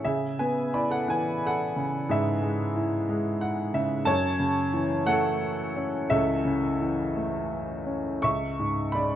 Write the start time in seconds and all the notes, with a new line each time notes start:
0.04 C#3 G#4 E5
0.39 B3 B4 G#5
0.74 E4 D5 B5
0.90 A4 F#5
1.08 E3 B4 G#5
1.46 A4 F#5
1.76 C#3
2.09 G#2 G#4 E5
2.42 G#3
2.76 E4
3.09 G#3
3.41 F#5
3.74 C#3 E5
4.05 F#2 C#5 A5
4.39 C#3
4.74 E3
5.06 A3 A4 F#5
5.76 C#4
6.10 C#2 A4 E5
6.45 C#3
6.81 E3
7.16 A3
7.86 C#4
8.22 C#2 E5 C#6
8.59 G#2
8.92 C#3 D5 B5